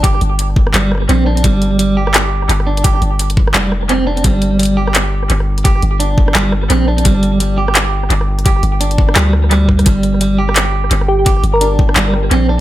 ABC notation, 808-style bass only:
X:1
M:4/4
L:1/8
Q:"Swing 16ths" 1/4=171
K:Gm
V:1 name="808-style bass" clef=bass
G,,, G,,,3 G,,,2 B,,,2 | G,,,6 G,,,2- | G,,, G,,,3 F,,,4 | G,,,6 G,,,2- |
G,,, G,,,3 G,,,2 B,,,2 | G,,,6 G,,,2- | G,,, G,,,3 D,,4 | G,,,6 G,,,2- |
G,,, G,,,3 G,,,2 B,,,2 |]